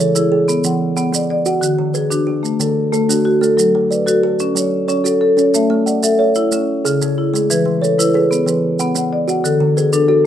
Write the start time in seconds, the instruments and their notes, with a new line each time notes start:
Already playing: kalimba E3, marimba G#4
0.00 marimba A4, kalimba C#5, maracas
0.15 marimba E4 G#4, maracas
0.32 kalimba G#4
0.48 marimba B3, maracas
0.64 kalimba E3, marimba F#5, maracas
0.97 marimba B3, kalimba F#5, maracas
1.13 kalimba B3, marimba D5, maracas
1.30 marimba D5
1.46 kalimba F#4, marimba F#5, maracas
1.61 marimba D3 F#4, maracas
1.79 kalimba D3
1.94 marimba G#4, kalimba B4, maracas
2.10 marimba D4 F#4, maracas
2.27 kalimba F#4
2.43 marimba A3, maracas
2.60 kalimba D3, marimba A4, maracas
2.93 marimba A3, kalimba A4, maracas
3.09 kalimba D4, marimba F#4, maracas
3.25 marimba F#4
3.41 kalimba A3, marimba A4, maracas
3.57 marimba F#3 A4, maracas
3.75 kalimba F#3
3.91 marimba B4, kalimba D5, maracas
4.06 marimba F#4 A4, maracas
4.23 kalimba A4
4.40 marimba C#4, maracas
4.55 kalimba F#3, marimba C#5, maracas
4.88 marimba C#4, kalimba C#5, maracas
5.04 kalimba F#4, marimba A4, maracas
5.21 marimba A4
5.37 kalimba C#4, marimba C#5, maracas
5.54 marimba A3 E5, maracas
5.70 kalimba A3
5.86 marimba D5, kalimba F#5, maracas
6.03 marimba A4 E5, maracas
6.19 kalimba C#5, marimba E5
6.35 marimba E4, maracas
6.52 kalimba A3, marimba C#4, maracas
6.85 marimba C#3, kalimba G#4, maracas
7.02 kalimba C#3, marimba G#4, maracas
7.18 marimba E4
7.34 kalimba G#3, marimba G#4, maracas
7.50 marimba E3 B4, maracas
7.66 kalimba E3
7.82 marimba A4, kalimba C#5, maracas
7.98 marimba E4 B4, maracas
8.14 kalimba G#4, marimba B4
8.31 marimba B3, maracas
8.46 kalimba E3, marimba B4, maracas
8.79 marimba B3, kalimba F#5, maracas
8.95 kalimba B3, marimba F#5, maracas
9.13 marimba D5
9.28 kalimba F#4, marimba F#5, maracas
9.44 marimba D3 A4, maracas
9.60 kalimba D3
9.77 marimba G#4, kalimba B4, maracas
9.93 marimba D4 A4, maracas
10.08 kalimba F#4, marimba A4